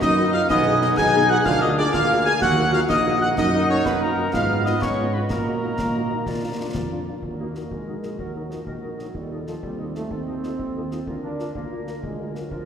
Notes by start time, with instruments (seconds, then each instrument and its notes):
Already playing: woodwind section A#4 D#5
0.01 tuba F#2, trombone section D#4, euphonium D#4, trumpet section D#5, piccolo D#6, concert bass drum, snare
0.18 french horn section A#3 D#4 F#4
0.33 french horn section A#3 D#4 F#4, euphonium F4, trumpet section F5, piccolo F6
0.49 tuba B1, trombone section B3, euphonium D#4, woodwind section B4 G#5, trumpet section D#5, piccolo D#6, concert bass drum, snare
0.66 french horn section B3 D#4 G#4
0.81 french horn section B3 D#4 G#4, euphonium D#4, trumpet section D#5, piccolo D#6, snare
0.97 tuba B1, trombone section D#4, euphonium G#4, trumpet section G#5, piccolo G#6, concert bass drum, snare
1.14 french horn section B3 D#4 G#4
1.30 french horn section B3 D#4 G#4, euphonium F#4, trumpet section F#5, piccolo F#6
1.45 tuba D2, trombone section D4, euphonium F4, woodwind section A#4, trumpet section F5, piccolo F6, concert bass drum, snare
1.61 french horn section A#3 F4 G#4, euphonium D#4, trumpet section D#5, piccolo D#6
1.78 french horn section A#3 F4 G#4, euphonium D4, trumpet section D5, piccolo D6
1.93 tuba D2, trombone section A#3, euphonium F4, trumpet section F5, piccolo F6, concert bass drum, snare
2.10 french horn section A#3 F4 G#4
2.25 french horn section A#3 F4 G#4, euphonium G#4, trumpet section G#5, piccolo G#6
2.41 tuba D#2, trombone section F#3, euphonium F#4, trumpet section F#5, woodwind section F#5, piccolo F#6, concert bass drum, snare
2.58 french horn section A#3 D#4 F#4
2.73 french horn section A#3 D#4 F#4, euphonium F4, trumpet section F5, piccolo F6, snare
2.89 tuba A#1, trombone section A#3, euphonium D#4, trumpet section D#5, piccolo D#6, concert bass drum, snare
3.06 french horn section A#3 D#4 F#4
3.21 french horn section A#3 D#4 F#4, euphonium F#4, trumpet section F#5, piccolo F#6
3.37 tuba F#2, trombone section D#4, euphonium D#4, woodwind section A#4, trumpet section D#5, piccolo D#6, concert bass drum, snare, crash
3.54 french horn section A#3 D#4 F#4
3.70 french horn section A#3 D#4 F#4, euphonium C#4, trumpet section C#5, piccolo C#6
3.85 tuba F#2, euphonium B3, trumpet section B4, piccolo B5, concert bass drum, snare
4.01 euphonium A#3, french horn section A#3 D#4 F#4, trumpet section A#4, piccolo A#5
4.18 french horn section A#3 D#4 F#4
4.33 tuba G#2, trombone section B3, euphonium F4, woodwind section B4 D#5, trumpet section F5, piccolo F6, concert bass drum, snare
4.51 french horn section B3 D#4 F4
4.65 french horn section B3 D#4 F4, euphonium D#4, trumpet section D#5, piccolo D#6, snare
4.81 tuba G#2, euphonium C#4, trumpet section C#5, piccolo C#6, concert bass drum, snare
4.99 french horn section B3 D#4 F4
5.14 euphonium B3, french horn section B3 D#4 F4, trumpet section B4, piccolo B5
5.30 tuba A#2, euphonium A#3, trombone section A#3, woodwind section F#4, trumpet section A#4, piccolo A#5, concert bass drum, snare
5.47 french horn section A#3 D#4 F#4
5.63 french horn section A#3 D#4 F#4
5.79 tuba A#2, concert bass drum, snare
5.95 french horn section A#3 D#4 F#4
6.11 french horn section A#3 D#4 F#4
6.26 tuba A#2, woodwind section F4 D5, concert bass drum, snare
6.43 french horn section A#3 D4 F4
6.59 french horn section A#3 D4 F4
6.74 tuba F2, concert bass drum, snare
6.91 french horn section A#3 D4 F4
7.08 french horn section A#3 D4 F4
7.22 tuba D#2, trombone section F#3, woodwind section F#4 A#4, concert bass drum
7.38 trombone section A#3, french horn section D#4 F#4 A#4, trumpet section D#5
7.55 french horn section D#4 F#4 A#4, trumpet section D#5, snare
7.70 tuba A#1, trombone section G#3, euphonium D#4, concert bass drum
7.87 french horn section D#4 F#4 A#4, trumpet section D#5
8.03 french horn section D#4 F#4 A#4, trumpet section D#5, snare
8.18 tuba D#2, trombone section F#3, euphonium F#4, woodwind section F#4 A#4, concert bass drum
8.35 french horn section D#4 F#4 A#4, trumpet section D#5
8.50 trombone section F3, french horn section D#4 F#4 A#4, trumpet section D#5, snare
8.66 tuba A#1, trombone section D#3, woodwind section F#4 A#4, concert bass drum
8.82 french horn section D#4 F#4 A#4, trumpet section D#5
8.99 trombone section F#3, french horn section D#4 F#4 A#4, trumpet section D#5, snare
9.14 tuba D#2, trombone section G3, euphonium D#4, woodwind section F4 A4, concert bass drum
9.31 french horn section D#4 F4 A4, trumpet section D#5
9.47 trombone section F3, french horn section D#4 F4 A4, trumpet section D#5, snare
9.63 tuba D#2, trombone section G3, euphonium C4, concert bass drum
9.79 french horn section D#4 F4 A4, trumpet section D#5
9.95 trombone section A3, french horn section D#4 F4 A4, trumpet section D#5, snare
10.11 tuba D#2, trombone section C4, euphonium D#4, woodwind section F4 A4, concert bass drum
10.27 french horn section D#4 F4 A4, trumpet section D#5
10.43 french horn section D#4 F4 A4, trumpet section D#5, snare
10.59 tuba D#2, euphonium C4, concert bass drum
10.75 french horn section D#4 F4 A4, trumpet section D#5
10.91 french horn section D#4 F4 A4, trumpet section D#5, snare
11.07 tuba D2, trombone section A#3, euphonium D4, woodwind section F4 A#4, concert bass drum
11.23 trombone section D4, french horn section F4 A#4, trumpet section A#4
11.39 french horn section F4 A#4, trumpet section A#4, snare
11.55 tuba D2, trombone section A#3, woodwind section F4 A#4, euphonium F4, concert bass drum
11.71 french horn section F4 A#4, trumpet section A#4
11.87 french horn section F4 A#4, trumpet section A#4, snare
12.03 tuba D2, trombone section G#3, concert bass drum
12.19 french horn section F4 A#4, trumpet section A#4
12.35 trombone section F#3, french horn section F4 A#4, trumpet section A#4, snare
12.51 tuba D2, trombone section F3, woodwind section F4 A#4, concert bass drum